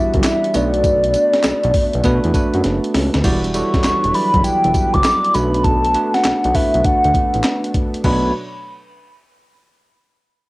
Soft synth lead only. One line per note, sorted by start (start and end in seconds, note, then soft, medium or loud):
0.00 0.24 E5 loud
0.25 0.57 E5 medium
0.56 2.65 D5 medium
3.55 4.16 C#6 loud
4.15 4.43 B5 medium
4.44 4.95 G5 loud
4.93 5.35 D6 loud
5.34 5.65 B5 loud
5.64 6.16 A5 loud
6.14 6.56 F#5 medium
6.55 6.85 E5 medium
6.85 7.71 F#5 medium
8.05 8.33 B5 loud